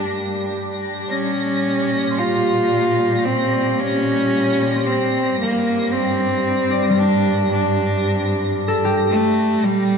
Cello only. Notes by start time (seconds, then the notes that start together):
Already playing: D4
1.09 C#4
2.19 F4
3.25 C4
3.80 C#4
4.87 C4
5.40 A#3
5.92 C4
6.99 D4
7.52 D4
9.10 A3
9.64 G3